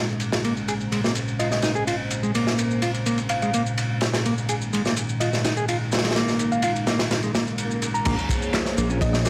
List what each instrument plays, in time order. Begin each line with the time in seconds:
Already playing: analog synth pad A#2 G#3 C#4 D#4
0.09 shaker
0.20 ride, shaker
0.32 snare, ride, shaker
0.44 clean electric guitar A#3, analog synth pad C5, ride, shaker
0.57 shaker
0.68 clean electric guitar G#4, ride, shaker
0.80 shaker
0.92 clean electric guitar G#3, ride, shaker
1.04 clean electric guitar A#3, snare, shaker
1.15 ride, shaker
1.28 shaker
1.39 clean electric guitar F4, synth pluck D#5, ride, shaker
1.51 synth pluck D#5, snare, shaker
1.62 clean electric guitar D#4, snare, ride, shaker
1.75 clean electric guitar G#4, shaker
1.87 clean electric guitar F4, ride, shaker
2.10 ride, shaker
2.23 clean electric guitar G#3, shaker
2.35 clean electric guitar A#3, ride, shaker
2.47 snare, shaker
2.58 ride, shaker
2.71 shaker
2.82 clean electric guitar F4, ride, shaker
2.94 ride, shaker
3.06 clean electric guitar A#3, ride, shaker
3.18 ride, shaker
3.29 synth pluck F5, ride, shaker
3.42 clean electric guitar G#3, synth pluck F5, ride, shaker
3.54 clean electric guitar A#3, ride, shaker
3.66 shaker
3.78 ride, shaker
4.01 snare, ride, shaker
4.13 snare, ride, shaker
4.25 clean electric guitar A#3, analog synth pad D#4, ride, shaker
4.38 shaker
4.49 clean electric guitar G#4, ride, shaker
4.62 shaker
4.73 clean electric guitar G#3, ride, shaker
4.85 clean electric guitar A#3, snare, shaker
4.97 ride, shaker
5.09 shaker
5.20 clean electric guitar F4, synth pluck D#5, ride, shaker
5.33 snare, shaker
5.44 clean electric guitar D#4, snare, ride, shaker
5.57 clean electric guitar G#4, shaker
5.68 clean electric guitar F4, ride, shaker
5.92 snare, ride, shaker
5.98 snare, ride
6.04 clean electric guitar G#3, snare, ride, shaker
6.11 snare, ride
6.16 clean electric guitar A#3, snare, ride, shaker
6.28 snare, shaker
6.39 ride, shaker
6.52 synth pluck F5, shaker
6.62 clean electric guitar F4, synth pluck F5, ride, shaker
6.76 ride, shaker
6.87 clean electric guitar A#3, snare, ride, shaker
6.99 snare, ride, shaker
7.11 snare, ride, swell, shaker
7.22 clean electric guitar G#3, ride, shaker
7.35 clean electric guitar A#3, snare, ride, shaker
7.47 shaker
7.58 ride, shaker
7.71 shaker
7.82 ride, shaker
7.94 synth pluck A#5, shaker
8.05 detuned saw bass A#1, analog synth pad A#3 G#4 C5 C#5, clean electric guitar A#3, synth pluck A#5, kick, crash, ride, impact, shaker
8.19 shaker
8.29 kick, ride, shaker
8.42 shaker
8.54 snare, clap, ride, shaker
8.65 snare, shaker
8.77 detuned saw bass A#1, clean electric guitar A#3, ride, shaker
8.89 clean electric guitar C#4, shaker
9.01 synth pluck D#5, kick, ride, shaker
9.13 synth pluck D#5, snare, shaker
9.25 clean electric guitar A#3, snare, ride, shaker